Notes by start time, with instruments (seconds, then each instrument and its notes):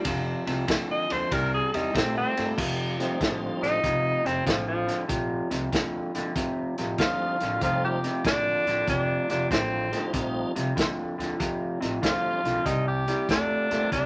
Already playing: electric slide guitar D4
0.04 upright bass F1, clean electric guitar F2 C3, kick, snare, ride
0.47 upright bass C2, clean electric guitar F2 C3, snare, ride
0.68 clean electric guitar F2 D3, kick, snare, ride
0.91 tenor saxophone D#5
1.10 upright bass D#2, clean electric guitar F2 D3, tenor saxophone C5, snare, ride
1.31 upright bass C2, clean electric guitar C3 G3, tenor saxophone A#4, kick, snare, ride
1.54 tenor saxophone G#4
1.74 upright bass E2, clean electric guitar C3 G3, tenor saxophone D#4, snare, ride
1.93 upright bass A#1, clean electric guitar C3 A3, tonewheel organ G3 A#3 D4 E4, tenor saxophone C4, kick, snare, ride
2.17 tenor saxophone C4
2.37 upright bass G2, clean electric guitar C3 A3, snare, ride
2.57 upright bass F1, clean electric guitar F2 C3, kick, snare, crash
2.99 clean electric guitar F2 C3, tonewheel organ F3 G3 A3 C4 D#4, snare, closed hi-hat
3.20 upright bass A1, clean electric guitar F2 D3, kick, snare, closed hi-hat
3.62 upright bass A1, clean electric guitar F2 D3, tenor saxophone D#4, snare, closed hi-hat
3.84 upright bass F1, clean electric guitar F2 C3, kick, snare, closed hi-hat
4.24 upright bass F1, clean electric guitar F2 C3, tenor saxophone C4, snare, closed hi-hat
4.46 upright bass A1, clean electric guitar F2 D3, tenor saxophone F3, kick, snare, closed hi-hat
4.68 tenor saxophone F3
4.87 clean electric guitar F2 D3, snare, closed hi-hat
5.08 upright bass A#1, clean electric guitar F2 C3, kick, snare, closed hi-hat
5.51 upright bass C2, clean electric guitar F2 C3, snare, closed hi-hat
5.72 upright bass D2, clean electric guitar F2 D3, kick, snare, closed hi-hat
6.15 upright bass D#2, clean electric guitar F2 D3, snare, closed hi-hat
6.36 upright bass D2, clean electric guitar F2 C3, kick, snare, closed hi-hat
6.78 upright bass A1, clean electric guitar F2 C3, snare, closed hi-hat
6.98 upright bass D#2, clean electric guitar F2 D3, tonewheel organ F3 G3 A3 C4 D#4, tenor saxophone F4, kick, snare, closed hi-hat
7.40 upright bass A1, clean electric guitar F2 D3, snare, closed hi-hat
7.61 upright bass F1, clean electric guitar F2 C3, tonewheel organ F3 G3 A3 C4 D#4, tenor saxophone F4, kick, snare, closed hi-hat
7.84 tenor saxophone G4
8.03 clean electric guitar F2 C3, snare, closed hi-hat
8.25 upright bass A1, clean electric guitar F2 D3, tenor saxophone D4, kick, snare, closed hi-hat
8.66 upright bass A1, clean electric guitar F2 D3, snare, closed hi-hat
8.87 upright bass F1, clean electric guitar F2 C3, tenor saxophone D4, kick, snare, closed hi-hat
9.29 upright bass F1, clean electric guitar F2 C3, tenor saxophone D4, snare, closed hi-hat
9.51 upright bass A1, clean electric guitar F2 D3, tenor saxophone C4, kick, snare, closed hi-hat
9.91 clean electric guitar F2 D3, tonewheel organ F3 G3 A3 C4 D#4, snare, closed hi-hat
10.13 upright bass A#1, clean electric guitar F2 C3, tonewheel organ F3 G3 A3 C4 D#4, kick, snare, closed hi-hat
10.55 upright bass C2, clean electric guitar F2 C3, snare, closed hi-hat
10.76 upright bass D2, clean electric guitar F2 D3, kick, snare, closed hi-hat
11.18 upright bass D#2, clean electric guitar F2 D3, snare, closed hi-hat
11.39 upright bass D2, clean electric guitar F2 C3, kick, snare, closed hi-hat
11.81 upright bass A1, clean electric guitar F2 C3, snare, closed hi-hat
12.02 upright bass D#2, clean electric guitar F2 D3, tonewheel organ F3 G3 A3 C4 D4, tenor saxophone F4, kick, snare, closed hi-hat
12.44 upright bass B1, clean electric guitar F2 D3, snare, closed hi-hat
12.65 upright bass C2, clean electric guitar C3 G3, tenor saxophone D#4, kick, snare, closed hi-hat
12.88 tenor saxophone G4
13.08 clean electric guitar C3 G3, snare, closed hi-hat
13.29 upright bass E2, clean electric guitar C3 A3, tenor saxophone D4, kick, snare, closed hi-hat
13.70 upright bass E2, clean electric guitar C3 A3, tonewheel organ E3 G3 A#3 C4 D4, snare, closed hi-hat
13.91 upright bass C2, clean electric guitar C3 G3, tenor saxophone D4, kick, snare, closed hi-hat